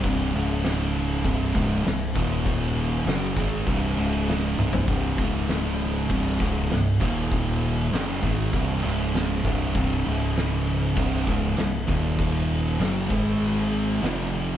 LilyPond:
<<
  \new Staff \with { instrumentName = "Distorted electric guitar" } { \clef bass \time 4/4 \key c \phrygian \tempo 4 = 99 <c, g, c>8 <des, aes, des>4. <c, g, c>8 <des, aes, des>8 <c, g,>8 <ees, bes, ees>8~ | <ees, bes, ees>4 <fis, des fis>8 <aes, ees aes>8 <c, g, c>8 <des, aes, des>4 <c, g, c>8 | <c, g, c>8 <des, aes, des>4. <c, g, c>8 <des, aes, des>8 <c, g,>8 <ees, bes, ees>8~ | <ees, bes, ees>4 <fis, des fis>8 <aes, ees aes>8 <c, g, c>8 <des, aes, des>4 <c, g, c>8 |
<c, g, c>8 <des, aes, des>4. <c, g, c>8 <des, aes, des>8 <c, g,>8 <ees, bes, ees>8~ | <ees, bes, ees>4 <fis, cis fis>8 <aes, ees aes>4. <f, c f>4 | }
  \new Staff \with { instrumentName = "Distorted electric guitar" } { \clef bass \time 4/4 \key c \phrygian <c, g, c>8 <des, aes, des>4. <c, g, c>8 <des, aes, des>8 <c, g,>8 <ees, bes, ees>8~ | <ees, bes, ees>4 <fis, des fis>8 <aes, ees aes>8 <c, g, c>8 <des, aes, des>4 <c, g, c>8 | <c, g, c>8 <des, aes, des>4. <c, g, c>8 <des, aes, des>8 <c, g,>8 <ees, bes, ees>8~ | <ees, bes, ees>4 <fis, des fis>8 <aes, ees aes>8 <c, g, c>8 <des, aes, des>4 <c, g, c>8 |
<c, g, c>8 <des, aes, des>4. <c, g, c>8 <des, aes, des>8 <c, g,>8 <ees, bes, ees>8~ | <ees, bes, ees>4 <fis, cis fis>8 <aes, ees aes>4. <f, c f>4 | }
  \new Staff \with { instrumentName = "Distorted electric guitar" } { \clef bass \time 4/4 \key c \phrygian <c, g, c>8 <des, aes, des>4. <c, g, c>8 <des, aes, des>8 <c, g,>8 <ees, bes, ees>8~ | <ees, bes, ees>4 <fis, des fis>8 <aes, ees aes>8 <c, g, c>8 <des, aes, des>4 <c, g, c>8 | <c, g, c>8 <des, aes, des>4. <c, g, c>8 <des, aes, des>8 <c, g,>8 <ees, bes, ees>8~ | <ees, bes, ees>4 <fis, des fis>8 <aes, ees aes>8 <c, g, c>8 <des, aes, des>4 <c, g, c>8 |
<c, g, c>8 <des, aes, des>4. <c, g, c>8 <des, aes, des>8 <c, g,>8 <ees, bes, ees>8~ | <ees, bes, ees>4 <fis, cis fis>8 <aes, ees aes>4. <f, c f>4 | }
  \new Staff \with { instrumentName = "Picked electric bass" } { \clef bass \time 4/4 \key c \phrygian c,,8 des,,4. c,,8 des,,8 c,,8 ees,,8~ | ees,,4 fis,,8 aes,,8 c,,8 des,,4 c,,8 | c,,8 des,,4. c,,8 des,,8 c,,8 ees,,8~ | ees,,4 fis,,8 aes,,8 c,,8 des,,4 c,,8 |
c,,8 des,,4. c,,8 des,,8 c,,8 ees,,8~ | ees,,4 fis,,8 aes,,4. f,,4 | }
  \new DrumStaff \with { instrumentName = "Drums" } \drummode { \time 4/4 <cymc bd>8 cymc8 <cymc sn>8 cymc8 <cymc bd>8 <cymc bd>8 <cymc sn>8 <cymc bd>8 | <cymc bd>8 cymc8 <cymc sn>8 <cymc bd>8 <cymc bd>8 cymc8 <cymc sn>8 tommh16 tomfh16 | <cymc bd>8 <cymc bd>8 <cymc sn>8 cymc8 <cymc bd>8 <cymc bd>8 <cymc sn>8 <cymc bd>8 | <cymc bd>8 cymc8 <cymc sn>8 <cymc bd>8 <cymc bd>8 cymc8 <cymc sn>8 <cymc bd>8 |
<cymc bd>8 cymc8 <cymc sn>8 cymc8 <cymc bd>8 <cymc bd>8 <cymc sn>8 <cymc bd>8 | <cymc bd>8 cymc8 <cymc sn>8 <cymc bd>8 cymc8 cymc8 <cymc sn>8 cymc8 | }
>>